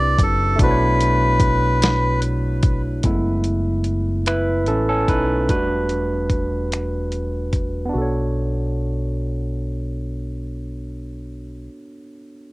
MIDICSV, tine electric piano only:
0, 0, Header, 1, 2, 480
1, 0, Start_track
1, 0, Key_signature, 2, "minor"
1, 0, Tempo, 816327
1, 348, Time_signature, 6, 3, 24, 8
1, 7365, End_track
2, 0, Start_track
2, 0, Title_t, "Tine electric piano"
2, 0, Program_c, 0, 4
2, 0, Control_c, 0, 64, 127
2, 0, Note_on_c, 0, 60, 71
2, 0, Note_on_c, 0, 62, 63
2, 0, Note_on_c, 0, 64, 67
2, 0, Note_on_c, 0, 67, 63
2, 0, Note_on_c, 0, 71, 82
2, 314, Note_off_c, 0, 60, 0
2, 321, Note_off_c, 0, 62, 0
2, 327, Note_off_c, 0, 64, 0
2, 329, Note_on_c, 0, 57, 74
2, 331, Note_off_c, 0, 67, 0
2, 337, Note_off_c, 0, 71, 0
2, 343, Note_on_c, 0, 62, 63
2, 354, Control_c, 0, 64, 0
2, 356, Note_on_c, 0, 64, 62
2, 367, Note_on_c, 0, 66, 65
2, 379, Note_on_c, 0, 72, 63
2, 402, Note_off_c, 0, 72, 0
2, 416, Note_on_c, 0, 73, 75
2, 456, Control_c, 0, 64, 127
2, 1755, Note_off_c, 0, 57, 0
2, 1762, Note_off_c, 0, 62, 0
2, 1768, Note_off_c, 0, 64, 0
2, 1774, Note_off_c, 0, 66, 0
2, 1793, Note_on_c, 0, 56, 48
2, 1795, Control_c, 0, 64, 0
2, 1795, Note_on_c, 0, 57, 45
2, 1795, Note_on_c, 0, 59, 45
2, 1797, Note_on_c, 0, 64, 54
2, 1798, Note_off_c, 0, 73, 0
2, 1908, Control_c, 0, 64, 127
2, 2487, Note_off_c, 0, 56, 0
2, 2488, Note_off_c, 0, 57, 0
2, 2488, Note_off_c, 0, 59, 0
2, 2489, Note_off_c, 0, 64, 0
2, 2511, Note_on_c, 0, 71, 87
2, 2515, Note_on_c, 0, 64, 64
2, 2618, Note_off_c, 0, 71, 0
2, 2621, Note_off_c, 0, 64, 0
2, 2750, Note_on_c, 0, 69, 77
2, 2757, Note_on_c, 0, 61, 60
2, 2864, Note_off_c, 0, 61, 0
2, 2867, Note_off_c, 0, 69, 0
2, 2874, Note_on_c, 0, 69, 82
2, 2875, Note_on_c, 0, 61, 66
2, 2927, Note_off_c, 0, 69, 0
2, 2928, Note_off_c, 0, 61, 0
2, 2993, Note_on_c, 0, 63, 64
2, 2994, Note_on_c, 0, 71, 79
2, 3099, Note_off_c, 0, 63, 0
2, 3100, Note_off_c, 0, 71, 0
2, 3228, Note_on_c, 0, 55, 46
2, 3230, Note_on_c, 0, 57, 41
2, 3232, Note_on_c, 0, 62, 58
2, 3234, Control_c, 0, 64, 0
2, 3234, Note_on_c, 0, 71, 73
2, 3235, Note_on_c, 0, 66, 53
2, 3325, Control_c, 0, 64, 127
2, 3547, Note_off_c, 0, 55, 0
2, 3548, Note_off_c, 0, 57, 0
2, 3551, Note_off_c, 0, 66, 0
2, 4167, Note_off_c, 0, 71, 0
2, 4168, Note_off_c, 0, 62, 0
2, 4619, Note_on_c, 0, 59, 61
2, 4640, Note_on_c, 0, 62, 57
2, 4666, Note_on_c, 0, 66, 58
2, 4675, Control_c, 0, 64, 0
2, 4691, Note_on_c, 0, 69, 56
2, 4714, Note_on_c, 0, 73, 68
2, 4780, Control_c, 0, 64, 127
2, 6809, Note_off_c, 0, 59, 0
2, 6830, Note_off_c, 0, 62, 0
2, 6856, Note_off_c, 0, 66, 0
2, 6881, Note_off_c, 0, 69, 0
2, 6904, Note_off_c, 0, 73, 0
2, 7365, End_track
0, 0, End_of_file